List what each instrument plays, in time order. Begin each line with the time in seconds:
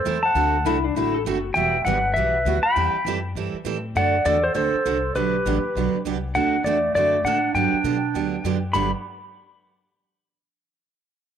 Already playing: clarinet A4, electric slide guitar C5
0.05 upright bass E2, steel-string acoustic guitar E3 A3 C4 E4 A4
0.23 clarinet F#5, electric slide guitar A5
0.35 upright bass D2, steel-string acoustic guitar D3 A3 C4 F#4 A4
0.65 upright bass C2, steel-string acoustic guitar D3 A3 C4 F#4 A4, pedal steel guitar E4
0.84 pedal steel guitar D4
0.95 upright bass A1, steel-string acoustic guitar D3 A3 C4 F#4 A4, pedal steel guitar E4
1.14 pedal steel guitar A4
1.25 upright bass F#1, steel-string acoustic guitar D3 A3 C4 F#4 A4, pedal steel guitar F#4
1.54 upright bass E1, steel-string acoustic guitar E3 G3 B3 F#4, clarinet E5, electric slide guitar G5
1.85 upright bass G1, steel-string acoustic guitar E3 G3 B3 F#4, clarinet B4, electric slide guitar F#5
2.14 upright bass B1, steel-string acoustic guitar E3 G3 B3 F#4, clarinet B4, electric slide guitar E5
2.45 upright bass D2, steel-string acoustic guitar E3 G3 B3 F#4
2.63 clarinet G5, electric slide guitar B5, muted upright bass stroke
2.76 upright bass E2, steel-string acoustic guitar E3 G3 C4 E4 A4
3.05 upright bass F#2, steel-string acoustic guitar E3 G3 C4 E4 A4
3.35 upright bass G2, steel-string acoustic guitar E3 G3 C4 E4 A4
3.53 muted upright bass stroke
3.65 upright bass A2, steel-string acoustic guitar E3 G3 C4 E4 A4
3.95 upright bass F#2, steel-string acoustic guitar D3 A3 C4 F#4 A4, clarinet D5, electric slide guitar F#5
4.25 upright bass E2, steel-string acoustic guitar D3 A3 C4 F#4 A4, clarinet A4, electric slide guitar D5
4.44 clarinet A4, electric slide guitar C5
4.54 upright bass D2, steel-string acoustic guitar D3 A3 C4 F#4 A4, clarinet A4, electric slide guitar C5
4.74 muted upright bass stroke
4.85 upright bass C2, steel-string acoustic guitar D3 A3 C4 F#4 A4
5.15 upright bass B1, steel-string acoustic guitar D3 F#3 B3 D4 G4, clarinet G4, electric slide guitar B4
5.45 upright bass A1, steel-string acoustic guitar D3 F#3 B3 D4 G4
5.75 upright bass B1, steel-string acoustic guitar D3 F#3 B3 D4 G4
5.94 muted upright bass stroke
6.05 upright bass C2, steel-string acoustic guitar D3 F#3 B3 D4 G4
6.35 upright bass D2, steel-string acoustic guitar D3 A3 C4 F#4 A4, clarinet D4, electric slide guitar F#5
6.64 upright bass E2, steel-string acoustic guitar D3 A3 C4 F#4 A4, clarinet A3, electric slide guitar D5
6.95 upright bass F#2, steel-string acoustic guitar D3 A3 C4 F#4 A4, clarinet A3, electric slide guitar D5
7.24 upright bass A2, steel-string acoustic guitar D3 A3 C4 F#4 A4, clarinet D4, electric slide guitar F#5
7.54 upright bass G2, steel-string acoustic guitar D3 F#3 B3 D4 G4, clarinet D4, electric slide guitar G5
7.73 muted upright bass stroke
7.84 upright bass B2, steel-string acoustic guitar D3 F#3 B3 D4 G4
8.14 upright bass D2, steel-string acoustic guitar D3 F#3 B3 D4 G4
8.44 upright bass F#2, steel-string acoustic guitar D3 F#3 B3 D4 G4
8.73 upright bass G1, steel-string acoustic guitar G2 D3 F#3 B3 D4 G4, clarinet G4, electric slide guitar B5